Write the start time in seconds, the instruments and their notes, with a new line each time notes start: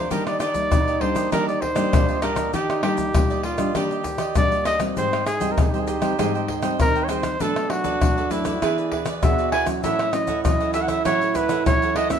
Already playing: trumpet C5
0.10 nylon-string guitar D#3 G3 A#3 D4, cavaquinho D4 G4 D5 D#5, trombone D#4, trumpet A#4, pandeiro, shaker, surdo
0.26 cavaquinho G4 D5 D#5, trumpet D5, pandeiro, tamborim, shaker
0.40 cavaquinho D4 G4 D5 D#5, trumpet D5, pandeiro, tamborim, shaker
0.54 nylon-string guitar G3 A#3, muted cavaquinho stroke, pandeiro, shaker, surdo
0.71 nylon-string guitar A#2, pandeiro, tamborim, shaker, surdo
0.87 cavaquinho G4 D5 D#5, pandeiro, shaker
1.00 nylon-string guitar G3 A#3 D4, cavaquinho D4 G4 D5 D#5, trumpet C5, pandeiro, surdo
1.15 cavaquinho G4 D5 D#5, pandeiro, tamborim, shaker, surdo
1.32 nylon-string guitar D#3 G3 A#3 D4, cavaquinho D4 G4 D5 D#5, trumpet A#4, pandeiro, tamborim, shaker, surdo
1.48 cavaquinho G4 D5 D#5, trumpet D5, pandeiro, shaker
1.61 trumpet C5, muted cavaquinho stroke, pandeiro, surdo
1.75 nylon-string guitar G3 A#3 D4, cavaquinho G4 D5 D#5, pandeiro, tamborim, shaker
1.92 nylon-string guitar A#2, trombone D4, pandeiro, tamborim, shaker, surdo
2.09 cavaquinho G4 D5 D#5, pandeiro, shaker
2.22 nylon-string guitar G3 A#3 D4, cavaquinho D4 G4 D5 D#5, trumpet A#4, pandeiro, tamborim, shaker
2.36 cavaquinho G4 D5 D#5, pandeiro, tamborim, shaker, surdo
2.53 nylon-string guitar D#3, cavaquinho D4 G4 D5 D#5, trombone D#4, trumpet G4, pandeiro, shaker, surdo
2.70 cavaquinho G4 D5 D#5, pandeiro, tamborim, shaker
2.82 nylon-string guitar G3 A#3 D4, cavaquinho D4 G4 D5 D#5, trumpet G4, pandeiro, tamborim
2.98 muted cavaquinho stroke, pandeiro, shaker, surdo
3.13 nylon-string guitar A#2 G3 A#3, pandeiro, tamborim, shaker, surdo
3.30 cavaquinho G4 D5 D#5, pandeiro, shaker
3.43 cavaquinho D4 G4 D5 D#5, trumpet F4, pandeiro
3.58 nylon-string guitar G3 A#3 D4, cavaquinho G4 D5 D#5, pandeiro, tamborim, shaker, surdo
3.75 nylon-string guitar D#3 G3 A#3 D4, cavaquinho D4 G4 D5 D#5, trumpet G4, pandeiro, tamborim, shaker, surdo
3.91 cavaquinho G4 D5 D#5, pandeiro, shaker
4.04 muted cavaquinho stroke, pandeiro, shaker, surdo
4.18 cavaquinho G4 D5 D#5, pandeiro, tamborim, shaker
4.35 nylon-string guitar A#2 G3 A#3 D4, trumpet D5, pandeiro, tamborim, shaker, surdo
4.52 cavaquinho G4 D5 D#5, pandeiro, shaker
4.65 cavaquinho D4 G4 D5 D#5, trumpet D#5, pandeiro, tamborim, shaker
4.79 nylon-string guitar G3 C4 D#4, cavaquinho G4 D5 D#5, pandeiro, tamborim, shaker, surdo
4.97 nylon-string guitar G#2, trombone D#4, cavaquinho G#4 C5 D#5 G5, trumpet C5, pandeiro, shaker, surdo
5.13 cavaquinho C5 D#5 G5, pandeiro, tamborim, shaker
5.26 trumpet G#4, muted cavaquinho stroke, pandeiro, tamborim, shaker
5.40 nylon-string guitar G3 C4 D#4, cavaquinho C5 D#5 G5, pandeiro, shaker, surdo
5.52 trumpet A#4
5.57 nylon-string guitar D#3, trumpet G#4, pandeiro, tamborim, shaker, surdo
5.70 nylon-string guitar G3 C4, trumpet G4, cavaquinho G5, pandeiro, shaker
5.74 nylon-string guitar D#4, cavaquinho C5 D#5
5.80 trumpet G#4
5.87 trumpet G4, cavaquinho G#4 C5 D#5 G5, pandeiro, shaker
6.01 nylon-string guitar G3 C4 D#4, cavaquinho C5 D#5 G5, pandeiro, tamborim, shaker, surdo
6.19 nylon-string guitar G#2 G3 C4 D#4, cavaquinho G#4 C5 D#5 G5, pandeiro, tamborim, shaker, surdo
6.34 cavaquinho C5 D#5 G5, pandeiro, shaker
6.48 cavaquinho G#4 C5 D#5 G5, pandeiro, surdo
6.62 nylon-string guitar G3 C4 D#4, cavaquinho C5 D#5 G5, pandeiro, tamborim, shaker
6.80 nylon-string guitar D#3, trumpet A#4, pandeiro, tamborim, shaker, surdo
6.95 cavaquinho C5 D#5 G5, pandeiro, shaker
7.04 trumpet C#5
7.09 nylon-string guitar G3 C4 D#4, cavaquinho G#4 C5 D#5 G5, trumpet C5, pandeiro, tamborim, shaker
7.23 muted cavaquinho stroke, pandeiro, tamborim, shaker, surdo
7.40 nylon-string guitar B2 F#3 A3 D4, cavaquinho D4 A4 B4 D5, trombone D4, trumpet A4, pandeiro, shaker, surdo
7.56 cavaquinho B4 D5, pandeiro, tamborim, shaker
7.70 nylon-string guitar F#3 A3 D4, trumpet F#4, muted cavaquinho stroke, pandeiro, tamborim
7.84 cavaquinho A4 B4 D5, pandeiro, shaker, surdo
8.01 nylon-string guitar F#2 F#3 A3 D4, pandeiro, tamborim, shaker, surdo
8.17 cavaquinho A4 B4 D5, pandeiro, shaker
8.30 nylon-string guitar F#3 A3 D4, cavaquinho D4 A4 B4 D5, trumpet E4, pandeiro, shaker, surdo
8.45 cavaquinho A4 B4 D5, pandeiro, tamborim, shaker, surdo
8.55 trombone F#4
8.62 nylon-string guitar E3 B3 D4 G#4, trombone E4, cavaquinho E4 G#4 B4 D5, pandeiro, tamborim, shaker, surdo
8.78 cavaquinho G#4 B4 D5, pandeiro, shaker
8.92 cavaquinho E4 G#4 B4 D5, pandeiro, surdo
9.06 cavaquinho G#4 B4 D5, pandeiro, tamborim, shaker
9.22 nylon-string guitar B2 B3 D4 G#4, trombone F#4, trumpet E5, pandeiro, tamborim, shaker, surdo
9.38 cavaquinho G#4 B4 D5, pandeiro, shaker
9.52 cavaquinho E4 G#4 B4 D5, trumpet G#5, pandeiro, tamborim
9.66 nylon-string guitar F#3 C#4 E4, muted cavaquinho stroke, pandeiro, tamborim, shaker, surdo
9.83 nylon-string guitar A2, cavaquinho E4 A4 C#5 F#5, trombone E4, trumpet E5, pandeiro, shaker, surdo
9.99 cavaquinho A4 C#5 F#5, pandeiro, tamborim, shaker
10.12 nylon-string guitar F#3 C#4 E4, trumpet D#5, muted cavaquinho stroke, pandeiro, tamborim, shaker
10.27 cavaquinho A4 C#5 F#5, pandeiro, shaker, surdo
10.44 nylon-string guitar E3 F#3 C#4 E4, trumpet D#5, pandeiro, tamborim, shaker, surdo
10.60 cavaquinho A4 C#5 F#5, pandeiro, shaker
10.74 cavaquinho E4 A4 C#5 F#5, trumpet E5, pandeiro, shaker
10.82 trumpet F#5
10.88 cavaquinho A4 C#5 F#5, trumpet E5, pandeiro, tamborim, shaker, surdo
11.05 nylon-string guitar A2 F#3 C#4 E4, cavaquinho E4 A4 C#5 F#5, trumpet C#5, pandeiro, tamborim, shaker, surdo
11.21 cavaquinho A4 C#5 F#5, pandeiro, shaker
11.35 cavaquinho E4 A4 C#5 F#5, trumpet B4, pandeiro, shaker, surdo
11.49 cavaquinho A4 C#5 F#5, pandeiro, tamborim, shaker
11.66 nylon-string guitar E3 F#3 C#4 E4, trumpet C#5, pandeiro, tamborim, shaker, surdo
11.82 cavaquinho A4 C#5 F#5, pandeiro, shaker
11.96 cavaquinho E4 A4 C#5 F#5, trumpet D#5, pandeiro, tamborim
12.10 nylon-string guitar A#3 C#4 F#4, trumpet E5, muted cavaquinho stroke, pandeiro, tamborim, shaker, surdo